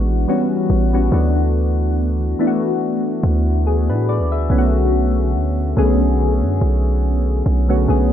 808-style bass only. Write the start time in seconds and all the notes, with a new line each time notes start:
Already playing: A1
0.70 A1
1.12 D2
3.23 D2
3.88 A2
4.19 D2
4.50 B1
5.34 D2
5.77 B1
6.42 F#2
6.61 B1
7.46 B1
7.88 B1